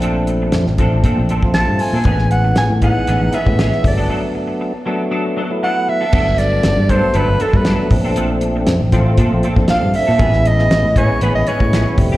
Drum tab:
CC |----------------|----------------|----------------|x---------------|
HH |x-x-x-x-x-x-x-o-|x-x-x-x-x-x-x-o-|----------------|--x-x-x-x-x-x-o-|
SD |----oo------o---|-o--o-------oo--|----------------|--o-o-------o---|
BD |------o-o--o----|o-----o----o--o-|----------------|o-----o----o--o-|

CC |----------------|----------------|
HH |x-x-x-x-x-x-x-o-|x-x-x-x-x-x-x-o-|
SD |----o-------o---|-o-oo-------o---|
BD |------o-o--o----|o-----o----o--o-|